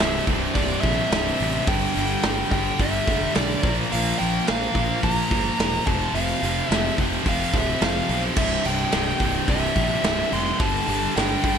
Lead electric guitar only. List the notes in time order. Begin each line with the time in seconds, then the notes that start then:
Already playing: E5
0.54 D5
0.81 E5
1.68 G5
2.52 G5
2.80 E5
3.35 D5
3.92 F5
4.19 G5
4.48 F5
5.04 A#5
5.87 A5
6.14 F5
6.68 E5
7.29 F5
7.58 E5
7.84 F5
8.38 E5
8.66 G5
9.49 E5
10.33 C6
10.61 A5
11.16 G5